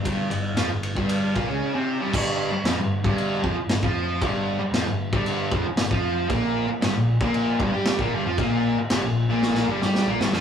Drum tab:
CC |----------------|x---x---x---x---|x---x---x---x---|x---x---x---x---|
RD |x-x-x-x-x-x-----|----------------|----------------|----------------|
SD |----o-----------|----o-------o---|----o-------o---|----o-------o---|
BD |o------o--o-----|o------o--o--o--|o------o--o--o--|o------o--o--o--|

CC |x---x-----------|
RD |----------------|
SD |----o---oo-oo-oo|
BD |o---------------|